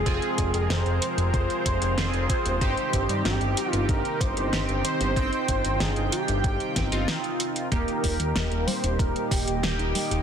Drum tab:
HH |xxxxxxxxxxxxxxxx|xxxxxxxxxxxxxxxx|xxxxxxxxxxxxxxxx|xxoxxxoxxxoxxxox|
SD |----o-------o---|----o-------o---|----o-----o-o---|----o-------o---|
BD |o-o-----o-o---o-|o-o-----o-o-----|o-o-----o-o-----|o-o-----o-o-----|